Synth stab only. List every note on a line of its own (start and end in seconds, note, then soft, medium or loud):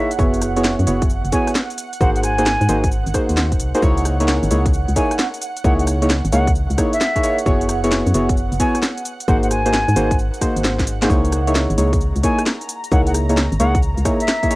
0.19 0.53 B3 loud
0.19 0.53 E4 medium
0.19 0.53 F#4 medium
0.19 0.53 G#4 medium
0.19 0.53 C#5 loud
0.56 0.85 B3 medium
0.56 0.85 E4 medium
0.56 0.85 F#4 medium
0.56 0.85 G#4 medium
0.56 0.85 C#5 loud
0.87 1.05 B3 medium
0.87 1.05 E4 medium
0.87 1.05 F#4 medium
0.87 1.05 G#4 medium
0.87 1.05 C#5 medium
1.32 1.51 B3 loud
1.32 1.51 E4 medium
1.32 1.51 F#4 medium
1.32 1.51 G#4 medium
1.32 1.51 C#5 loud
2.01 2.35 A#3 medium
2.01 2.35 D#4 medium
2.01 2.35 F#4 medium
2.01 2.35 G#4 medium
2.01 2.35 C5 loud
2.38 2.45 A#3 medium
2.38 2.45 D#4 medium
2.38 2.45 F#4 medium
2.38 2.45 G#4 medium
2.38 2.45 C5 medium
2.69 2.82 A#3 medium
2.69 2.82 D#4 medium
2.69 2.82 F#4 medium
2.69 2.82 G#4 medium
2.69 2.82 C5 loud
3.14 3.71 A#3 medium
3.14 3.71 D#4 medium
3.14 3.71 F#4 medium
3.14 3.71 G#4 medium
3.14 3.71 C5 loud
3.75 3.81 A#3 loud
3.75 3.81 D#4 medium
3.75 3.81 F#4 medium
3.75 3.81 G#4 medium
3.75 3.81 C5 loud
3.83 4.17 A#3 loud
3.83 4.17 D#4 medium
3.83 4.17 E4 medium
3.83 4.17 G#4 medium
3.83 4.17 C#5 loud
4.20 4.49 A#3 medium
4.20 4.49 D#4 medium
4.20 4.49 E4 medium
4.20 4.49 G#4 medium
4.20 4.49 C#5 medium
4.51 4.69 A#3 medium
4.51 4.69 D#4 medium
4.51 4.69 E4 medium
4.51 4.69 G#4 medium
4.51 4.69 C#5 medium
4.96 5.15 A#3 medium
4.96 5.15 D#4 medium
4.96 5.15 E4 medium
4.96 5.15 G#4 medium
4.96 5.15 C#5 loud
5.64 5.98 A#3 medium
5.64 5.98 D#4 medium
5.64 5.98 E4 medium
5.64 5.98 G#4 medium
5.64 5.98 C#5 loud
6.02 6.09 A#3 medium
6.02 6.09 D#4 medium
6.02 6.09 E4 medium
6.02 6.09 G#4 medium
6.02 6.09 C#5 loud
6.32 6.46 A#3 medium
6.32 6.46 D#4 medium
6.32 6.46 E4 medium
6.32 6.46 G#4 medium
6.32 6.46 C#5 loud
6.78 6.91 A#3 loud
6.78 6.91 D#4 medium
6.78 6.91 E4 medium
6.78 6.91 G#4 medium
6.78 6.91 C#5 loud
7.16 7.22 A#3 medium
7.16 7.22 D#4 medium
7.16 7.22 E4 medium
7.16 7.22 G#4 medium
7.16 7.22 C#5 medium
7.23 7.37 A#3 medium
7.23 7.37 D#4 medium
7.23 7.37 E4 medium
7.23 7.37 G#4 medium
7.23 7.37 C#5 loud
7.46 7.80 B3 medium
7.46 7.80 E4 medium
7.46 7.80 F#4 medium
7.46 7.80 G#4 medium
7.46 7.80 C#5 loud
7.84 8.12 B3 medium
7.84 8.12 E4 medium
7.84 8.12 F#4 medium
7.84 8.12 G#4 medium
7.84 8.12 C#5 loud
8.14 8.33 B3 medium
8.14 8.33 E4 medium
8.14 8.33 F#4 medium
8.14 8.33 G#4 medium
8.14 8.33 C#5 medium
8.60 8.78 B3 loud
8.60 8.78 E4 medium
8.60 8.78 F#4 medium
8.60 8.78 G#4 medium
8.60 8.78 C#5 loud
9.28 9.62 A#3 loud
9.28 9.62 D#4 medium
9.28 9.62 F#4 medium
9.28 9.62 G#4 medium
9.28 9.62 C5 loud
9.66 9.73 A#3 medium
9.66 9.73 D#4 medium
9.66 9.73 F#4 medium
9.66 9.73 G#4 medium
9.66 9.73 C5 loud
9.96 10.10 A#3 medium
9.96 10.10 D#4 medium
9.96 10.10 F#4 medium
9.96 10.10 G#4 medium
9.96 10.10 C5 loud
10.42 10.98 A#3 medium
10.42 10.98 D#4 medium
10.42 10.98 F#4 medium
10.42 10.98 G#4 medium
10.42 10.98 C5 medium
11.02 11.09 A#3 loud
11.02 11.09 D#4 medium
11.02 11.09 F#4 medium
11.02 11.09 G#4 medium
11.02 11.09 C5 loud
11.10 11.44 A#3 loud
11.10 11.44 D#4 medium
11.10 11.44 E4 medium
11.10 11.44 G#4 medium
11.10 11.44 C#5 loud
11.47 11.76 A#3 medium
11.47 11.76 D#4 medium
11.47 11.76 E4 medium
11.47 11.76 G#4 medium
11.47 11.76 C#5 loud
11.78 11.96 A#3 medium
11.78 11.96 D#4 medium
11.78 11.96 E4 medium
11.78 11.96 G#4 medium
11.78 11.96 C#5 medium
12.23 12.42 A#3 loud
12.23 12.42 D#4 medium
12.23 12.42 E4 medium
12.23 12.42 G#4 medium
12.23 12.42 C#5 loud
12.92 13.26 A#3 loud
12.92 13.26 D#4 medium
12.92 13.26 E4 medium
12.92 13.26 G#4 medium
12.92 13.26 C#5 loud
13.29 13.36 A#3 medium
13.29 13.36 D#4 medium
13.29 13.36 E4 medium
13.29 13.36 G#4 medium
13.29 13.36 C#5 medium
13.60 13.73 A#3 loud
13.60 13.73 D#4 medium
13.60 13.73 E4 medium
13.60 13.73 G#4 medium
13.60 13.73 C#5 loud
14.05 14.19 A#3 loud
14.05 14.19 D#4 medium
14.05 14.19 E4 medium
14.05 14.19 G#4 medium
14.05 14.19 C#5 loud
14.43 14.49 A#3 medium
14.43 14.49 D#4 medium
14.43 14.49 E4 medium
14.43 14.49 G#4 medium
14.43 14.49 C#5 medium
14.51 14.55 A#3 medium
14.51 14.55 D#4 medium
14.51 14.55 E4 medium
14.51 14.55 G#4 medium
14.51 14.55 C#5 loud